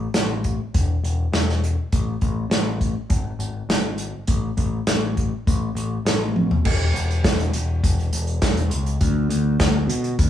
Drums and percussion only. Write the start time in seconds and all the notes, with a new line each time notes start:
0.14 snare, closed hi-hat
0.44 kick, closed hi-hat
0.74 kick, closed hi-hat
1.04 closed hi-hat
1.33 snare, closed hi-hat
1.49 snare
1.64 closed hi-hat
1.92 kick, closed hi-hat
2.21 kick, closed hi-hat
2.51 snare, closed hi-hat
2.81 kick, closed hi-hat
3.10 kick, closed hi-hat
3.40 closed hi-hat
3.70 snare, closed hi-hat
3.98 closed hi-hat
4.27 kick, closed hi-hat
4.57 kick, closed hi-hat
4.87 snare, closed hi-hat
5.17 kick, closed hi-hat
5.47 kick, closed hi-hat
5.77 closed hi-hat
6.06 snare, closed hi-hat
6.36 high tom
6.51 floor tom
6.65 kick, crash
6.96 closed hi-hat
7.11 closed hi-hat
7.24 kick, snare, closed hi-hat
7.39 closed hi-hat
7.53 closed hi-hat
7.84 kick, closed hi-hat
7.99 closed hi-hat
8.13 closed hi-hat
8.27 closed hi-hat
8.42 kick, snare, closed hi-hat
8.57 closed hi-hat
8.71 closed hi-hat
8.86 closed hi-hat
9.01 kick, closed hi-hat
9.30 closed hi-hat
9.60 kick, snare, closed hi-hat
9.89 closed hi-hat
10.04 closed hi-hat
10.19 kick, closed hi-hat